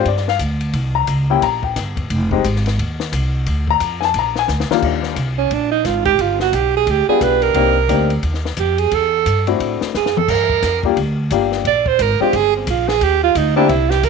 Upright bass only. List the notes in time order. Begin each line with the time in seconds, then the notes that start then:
0.05 G2
0.39 D2
0.74 C2
1.08 C#2
1.42 A#1
1.76 G1
2.10 F1
2.44 G#1
2.78 D#2
3.12 C2
3.47 D2
3.80 F2
4.14 A#1
4.48 D2
4.70 muted upright bass stroke
4.82 D#2
5.16 C2
5.51 A#1
5.85 G#1
6.19 G1
6.52 B1
6.87 D2
7.08 muted upright bass stroke
7.21 B1
7.54 C2
7.89 D2
8.23 D#2
8.57 F2
8.92 E2
9.26 G2
9.60 A2
9.82 muted upright bass stroke
9.95 F#2
10.29 G2
10.63 F2
10.97 D2
11.31 G1
11.65 A#1
11.99 G#1
12.20 muted upright bass stroke
12.33 G1
12.67 A#1
13.01 D#2
13.35 D2
13.69 C2
14.03 E2